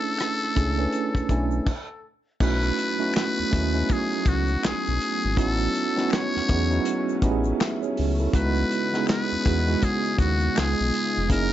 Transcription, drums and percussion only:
0.05 shaker
0.18 finger snap, cross-stick, closed hi-hat, shaker
0.41 cross-stick, shaker
0.56 kick, closed hi-hat, shaker
0.78 shaker
0.93 closed hi-hat, shaker
1.15 kick, cross-stick, shaker
1.29 kick, closed hi-hat, shaker
1.51 shaker
1.67 kick, crash
2.40 kick, crash, shaker
2.62 shaker
2.78 closed hi-hat, shaker
3.00 shaker
3.14 finger snap, snare, clap, closed hi-hat, shaker
3.36 shaker
3.52 kick, closed hi-hat, shaker
3.74 shaker
3.89 kick, closed hi-hat, shaker
4.12 shaker
4.25 kick, closed hi-hat, shaker
4.47 shaker
4.63 finger snap, snare, clap, closed hi-hat, shaker
4.86 shaker
5.01 closed hi-hat
5.22 shaker
5.37 kick, closed hi-hat, shaker
5.58 shaker
5.75 closed hi-hat, shaker
5.97 snare, shaker
6.10 finger snap, snare, clap, closed hi-hat, shaker
6.33 snare, shaker
6.48 kick, closed hi-hat, shaker
6.71 shaker
6.85 closed hi-hat, shaker
7.09 shaker
7.22 kick, closed hi-hat, shaker
7.44 shaker
7.60 finger snap, snare, clap, closed hi-hat, shaker
7.83 shaker
7.97 open hi-hat
8.18 shaker
8.33 kick, closed hi-hat, shaker
8.55 shaker
8.71 closed hi-hat, shaker
8.93 snare, shaker
9.07 finger snap, snare, clap, closed hi-hat, shaker
9.29 shaker
9.45 kick, closed hi-hat, shaker
9.66 shaker
9.82 kick, closed hi-hat, shaker
10.05 shaker
10.18 kick, closed hi-hat, shaker
10.40 shaker
10.56 finger snap, snare, clap, closed hi-hat, shaker
10.79 shaker
10.94 closed hi-hat
11.15 shaker
11.30 kick, closed hi-hat, shaker

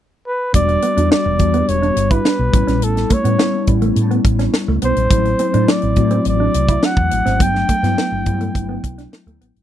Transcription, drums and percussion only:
0.54 kick, closed hi-hat
0.69 closed hi-hat
0.82 closed hi-hat
0.97 closed hi-hat
1.12 snare
1.39 kick, closed hi-hat
1.54 closed hi-hat
1.69 closed hi-hat
1.83 closed hi-hat
1.97 closed hi-hat
2.11 kick, closed hi-hat
2.25 snare
2.53 kick, closed hi-hat
2.68 snare, closed hi-hat
2.82 closed hi-hat
2.97 snare, closed hi-hat
3.10 kick, closed hi-hat
3.25 closed hi-hat
3.39 snare
3.67 kick, closed hi-hat
3.82 closed hi-hat
3.96 closed hi-hat
4.11 closed hi-hat
4.25 kick, closed hi-hat
4.39 snare, closed hi-hat
4.54 snare
4.82 closed hi-hat
4.97 closed hi-hat
5.11 kick, closed hi-hat
5.25 closed hi-hat
5.39 closed hi-hat
5.54 closed hi-hat
5.68 snare
5.82 closed hi-hat
5.96 kick, closed hi-hat
6.11 closed hi-hat
6.25 closed hi-hat
6.54 closed hi-hat
6.68 kick, closed hi-hat
6.83 snare
6.97 kick
7.11 closed hi-hat
7.26 snare, closed hi-hat
7.40 kick, closed hi-hat
7.55 snare
7.69 kick, closed hi-hat
7.84 snare, closed hi-hat
7.98 snare
8.26 kick, closed hi-hat
8.41 closed hi-hat
8.55 kick, closed hi-hat
8.84 kick, closed hi-hat
8.98 snare, closed hi-hat
9.13 snare
9.27 closed hi-hat
9.41 closed hi-hat
9.56 closed hi-hat

